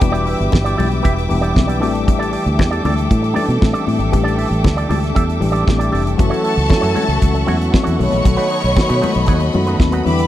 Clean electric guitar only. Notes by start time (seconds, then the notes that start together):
0.12 B3 E4 G4 D5
0.25 B3 E4 G4 E5
0.39 muted clean electric guitar stroke
0.51 muted clean electric guitar stroke
0.64 B3 E4 G4 D5
0.77 B3 E4 G4 D5
0.90 muted clean electric guitar stroke
1.03 B3 E4 G4 E5
1.16 muted clean electric guitar stroke
1.28 muted clean electric guitar stroke
1.41 B3 E4 G4 D5
1.67 B3 E4 G4 D5
1.80 D4 G4 A4 D5
1.94 muted clean electric guitar stroke
2.06 muted clean electric guitar stroke
2.19 D4 G4 A4 D5
2.31 D4 G4 A4 D5
2.45 muted clean electric guitar stroke
2.57 muted clean electric guitar stroke
2.71 D4 G4 A4 D5
2.84 D4 G4 A4 D5
2.96 muted clean electric guitar stroke
3.22 muted clean electric guitar stroke
3.34 D4 G4 A4 D5
3.48 muted clean electric guitar stroke
3.61 muted clean electric guitar stroke
3.73 D4 G4 A4 D5
3.86 muted clean electric guitar stroke
3.99 muted clean electric guitar stroke
4.12 muted clean electric guitar stroke
4.24 D4 G4 A4 D5
4.36 D4 G4 A4 E5
4.50 muted clean electric guitar stroke
4.64 muted clean electric guitar stroke
4.77 D4 G4 A4 D5
4.89 D4 G4 A4 D5
5.01 muted clean electric guitar stroke
5.15 D4 G4 A4 E5
5.26 muted clean electric guitar stroke
5.39 muted clean electric guitar stroke
5.52 D4 G4 A4 D5
5.79 D4 G4 A4 D5
5.91 D4 G4 A4 D5
6.05 muted clean electric guitar stroke
6.17 muted clean electric guitar stroke
6.30 A3 E4 F#4 C#5
6.43 A3 E4 F#4 C#5
6.56 muted clean electric guitar stroke
6.69 muted clean electric guitar stroke
6.81 A3 E4 F#4 C#5
6.93 A3 E4 F#4 C#5
7.07 muted clean electric guitar stroke
7.35 muted clean electric guitar stroke
7.47 A3 E4 F#4 C#5
7.59 muted clean electric guitar stroke
7.72 muted clean electric guitar stroke
7.83 A3 E4 F#4 C#5
7.98 muted clean electric guitar stroke
8.11 muted clean electric guitar stroke
8.23 muted clean electric guitar stroke
8.37 A3 D#4 F#4 B4
8.49 A3 D#4 F#4 C#5
8.63 muted clean electric guitar stroke
8.76 muted clean electric guitar stroke
8.88 A3 D#4 F#4 B4
9.01 A3 D#4 F#4 B4
9.13 muted clean electric guitar stroke
9.26 A3 D#4 F#4 C#5
9.41 muted clean electric guitar stroke
9.54 muted clean electric guitar stroke
9.67 A3 D#4 F#4 B4
9.80 muted clean electric guitar stroke
9.92 A3 D#4 F#4 B4
10.20 muted clean electric guitar stroke